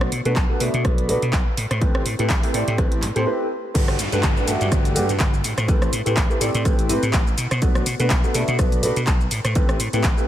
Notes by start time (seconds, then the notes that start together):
0.01 cross-stick, shaker
0.12 B2, open hi-hat
0.25 B2 A3 B3 D4 F#4 B4, closed hi-hat, shaker
0.36 B1, kick, clap, closed hi-hat
0.49 A3 B3 D4 F#4 B4, shaker
0.60 B2 A3 B3 D4 F#4 E5, open hi-hat
0.74 B2, closed hi-hat, shaker
0.84 B1 A3 B3 D4 F#4 B4, kick, cross-stick, closed hi-hat, shaker
0.98 closed hi-hat, shaker
1.09 B2 A3 B3 D4 F#4 B4, open hi-hat
1.22 B2, closed hi-hat, shaker
1.33 B1, kick, clap, closed hi-hat
1.47 shaker
1.57 A2, open hi-hat
1.70 A2, cross-stick, closed hi-hat, shaker
1.81 A1 A3 C4 E4 G4 B4, kick, closed hi-hat, shaker
1.94 cross-stick, shaker
2.06 A2, open hi-hat
2.19 A2 A3 C4 E4 G4 B4, closed hi-hat, shaker
2.30 A1, kick, clap, closed hi-hat
2.43 A3 C4 E4 G4 B4, open hi-hat, shaker
2.53 A2 A3 C4 E4 G4 D5, open hi-hat
2.67 A2, closed hi-hat, shaker
2.78 A1 A3 C4 E4 G4 B4, kick, cross-stick, closed hi-hat, shaker
2.92 closed hi-hat, shaker
3.02 A2, clap, open hi-hat
3.16 A2 A3 C4 E4 G4 C5, closed hi-hat, shaker
3.26 A3 C4 E4 G4 B4
3.74 G1 A3 D4 F#4 G4 B4, kick, closed hi-hat, crash, downlifter, shaker
3.88 cross-stick, shaker
3.99 G2, open hi-hat, shaker
4.12 G2 A3 D4 F#4 G4 B4, closed hi-hat, shaker
4.23 G1, kick, clap, closed hi-hat, shaker
4.36 A3 D4 F#4 G4 B4, shaker
4.47 G2 A3 D4 F#4 G4 E5, open hi-hat, shaker
4.61 G2, closed hi-hat, shaker
4.71 G1 A3 D4 F#4 G4 B4, kick, cross-stick, closed hi-hat, shaker
4.85 closed hi-hat, shaker
4.95 G2 A3 D4 F#4 G4 B4, open hi-hat, shaker
5.09 G2, closed hi-hat, shaker
5.20 G1, kick, clap, closed hi-hat, shaker
5.34 shaker
5.44 A2, open hi-hat, shaker
5.58 A2, cross-stick, closed hi-hat, shaker
5.68 A1 A3 C4 E4 G4 B4, kick, closed hi-hat, shaker
5.82 cross-stick, shaker
5.93 A2, open hi-hat, shaker
6.05 A2 A3 C4 E4 G4 B4, closed hi-hat, shaker
6.17 A1, kick, clap, closed hi-hat, shaker
6.30 A3 C4 E4 G4 B4, shaker
6.41 A2 A3 C4 E4 G4 D5, open hi-hat, shaker
6.54 A2, closed hi-hat, shaker
6.65 A1 A3 C4 E4 G4 B4, kick, cross-stick, closed hi-hat, shaker
6.79 closed hi-hat, shaker
6.89 A2 A3 C4 E4 G4 B4, open hi-hat, shaker
7.03 A2, closed hi-hat, shaker
7.13 A1, kick, clap, closed hi-hat, shaker
7.27 shaker
7.38 B2, open hi-hat, shaker
7.51 B2, cross-stick, closed hi-hat, shaker
7.62 B1 A3 B3 D4 F#4 B4, kick, closed hi-hat, shaker
7.75 cross-stick, shaker
7.86 B2, open hi-hat, shaker
7.99 B2 A3 B3 D4 F#4 B4, closed hi-hat, shaker
8.10 B1, kick, clap, closed hi-hat, shaker
8.24 A3 B3 D4 F#4 B4, shaker
8.34 B2 A3 B3 D4 F#4 E5, open hi-hat, shaker
8.48 B2, closed hi-hat, shaker
8.59 B1 A3 B3 D4 F#4 B4, kick, cross-stick, closed hi-hat, shaker
8.72 closed hi-hat, shaker
8.83 B2 A3 B3 D4 F#4 B4, open hi-hat, shaker
8.96 B2, closed hi-hat, shaker
9.07 B1, kick, clap, closed hi-hat, shaker
9.21 shaker
9.31 A2, open hi-hat, shaker
9.45 A2, cross-stick, closed hi-hat, shaker
9.55 A1 A3 C4 E4 G4 B4, kick, closed hi-hat, shaker
9.69 cross-stick, shaker
9.80 A2, open hi-hat, shaker
9.93 A2 A3 C4 E4 G4 B4, closed hi-hat, shaker
10.04 A1, kick, clap, closed hi-hat, shaker
10.17 A3 C4 E4 G4 B4, shaker